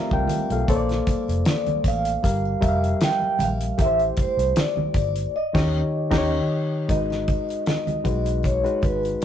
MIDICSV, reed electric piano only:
0, 0, Header, 1, 2, 480
1, 0, Start_track
1, 0, Tempo, 775194
1, 424, Time_signature, 4, 2, 24, 8
1, 5725, End_track
2, 0, Start_track
2, 0, Title_t, "Reed electric piano"
2, 0, Program_c, 0, 4
2, 0, Control_c, 0, 64, 127
2, 0, Note_on_c, 0, 60, 90
2, 0, Note_on_c, 0, 67, 77
2, 0, Note_on_c, 0, 70, 77
2, 0, Note_on_c, 0, 74, 51
2, 0, Note_on_c, 0, 76, 75
2, 0, Note_on_c, 0, 77, 98
2, 0, Note_on_c, 0, 82, 58
2, 69, Note_off_c, 0, 74, 0
2, 69, Note_off_c, 0, 82, 0
2, 80, Note_on_c, 0, 79, 78
2, 84, Note_off_c, 0, 70, 0
2, 84, Note_on_c, 0, 70, 62
2, 268, Note_off_c, 0, 60, 0
2, 269, Note_off_c, 0, 67, 0
2, 305, Note_off_c, 0, 79, 0
2, 307, Note_off_c, 0, 70, 0
2, 323, Note_off_c, 0, 77, 0
2, 323, Note_on_c, 0, 77, 66
2, 324, Note_on_c, 0, 69, 55
2, 420, Note_off_c, 0, 69, 0
2, 425, Note_on_c, 0, 58, 88
2, 428, Note_on_c, 0, 69, 84
2, 431, Note_on_c, 0, 72, 73
2, 432, Control_c, 0, 64, 0
2, 433, Note_off_c, 0, 76, 0
2, 436, Note_on_c, 0, 73, 79
2, 473, Note_off_c, 0, 73, 0
2, 473, Note_on_c, 0, 74, 96
2, 534, Control_c, 0, 64, 127
2, 547, Note_off_c, 0, 77, 0
2, 1169, Note_off_c, 0, 58, 0
2, 1171, Note_off_c, 0, 69, 0
2, 1172, Note_off_c, 0, 72, 0
2, 1193, Note_off_c, 0, 74, 0
2, 1379, Note_on_c, 0, 55, 70
2, 1386, Note_on_c, 0, 67, 61
2, 1387, Note_on_c, 0, 70, 67
2, 1387, Note_on_c, 0, 77, 80
2, 1392, Control_c, 0, 64, 0
2, 1511, Control_c, 0, 64, 127
2, 1578, Note_off_c, 0, 55, 0
2, 1582, Note_off_c, 0, 67, 0
2, 1582, Note_off_c, 0, 70, 0
2, 1582, Note_off_c, 0, 77, 0
2, 1614, Note_on_c, 0, 55, 69
2, 1617, Note_on_c, 0, 67, 68
2, 1618, Note_on_c, 0, 70, 70
2, 1622, Note_on_c, 0, 76, 66
2, 1663, Note_on_c, 0, 77, 81
2, 1667, Note_off_c, 0, 76, 0
2, 2183, Note_off_c, 0, 55, 0
2, 2184, Note_off_c, 0, 67, 0
2, 2185, Note_off_c, 0, 70, 0
2, 2207, Note_off_c, 0, 77, 0
2, 2338, Note_on_c, 0, 57, 69
2, 2341, Note_on_c, 0, 67, 67
2, 2342, Note_on_c, 0, 64, 61
2, 2346, Note_on_c, 0, 70, 60
2, 2355, Control_c, 0, 64, 0
2, 2388, Note_on_c, 0, 72, 80
2, 2389, Note_off_c, 0, 70, 0
2, 2470, Control_c, 0, 64, 127
2, 3086, Note_off_c, 0, 57, 0
2, 3088, Note_off_c, 0, 64, 0
2, 3088, Note_off_c, 0, 67, 0
2, 3111, Note_off_c, 0, 72, 0
2, 3313, Control_c, 0, 64, 0
2, 3415, Control_c, 0, 64, 127
2, 3427, Note_on_c, 0, 51, 91
2, 3433, Note_on_c, 0, 63, 88
2, 3433, Note_on_c, 0, 67, 96
2, 3435, Note_on_c, 0, 73, 96
2, 3591, Note_off_c, 0, 51, 0
2, 3594, Note_off_c, 0, 63, 0
2, 3594, Note_off_c, 0, 67, 0
2, 3596, Note_off_c, 0, 73, 0
2, 3780, Note_on_c, 0, 51, 84
2, 3781, Note_on_c, 0, 63, 92
2, 3785, Note_on_c, 0, 67, 88
2, 3827, Note_on_c, 0, 73, 98
2, 3949, Note_off_c, 0, 51, 0
2, 3950, Note_off_c, 0, 63, 0
2, 3952, Note_off_c, 0, 67, 0
2, 3976, Note_off_c, 0, 73, 0
2, 4261, Note_on_c, 0, 56, 72
2, 4266, Note_on_c, 0, 63, 64
2, 4269, Note_on_c, 0, 66, 61
2, 4270, Note_on_c, 0, 70, 57
2, 4274, Control_c, 0, 64, 0
2, 4311, Note_off_c, 0, 70, 0
2, 4311, Note_on_c, 0, 71, 69
2, 4390, Control_c, 0, 64, 127
2, 4826, Note_off_c, 0, 56, 0
2, 4829, Note_off_c, 0, 63, 0
2, 4830, Note_off_c, 0, 66, 0
2, 4851, Note_off_c, 0, 71, 0
2, 4977, Note_on_c, 0, 56, 67
2, 4979, Note_on_c, 0, 63, 53
2, 4981, Note_on_c, 0, 66, 60
2, 4989, Note_on_c, 0, 71, 68
2, 5263, Note_off_c, 0, 56, 0
2, 5264, Note_off_c, 0, 63, 0
2, 5265, Note_off_c, 0, 66, 0
2, 5269, Note_off_c, 0, 71, 0
2, 5347, Note_on_c, 0, 63, 60
2, 5349, Note_on_c, 0, 56, 67
2, 5351, Note_on_c, 0, 66, 62
2, 5353, Note_on_c, 0, 71, 74
2, 5725, Note_off_c, 0, 56, 0
2, 5725, Note_off_c, 0, 63, 0
2, 5725, Note_off_c, 0, 66, 0
2, 5725, Note_off_c, 0, 71, 0
2, 5725, End_track
0, 0, End_of_file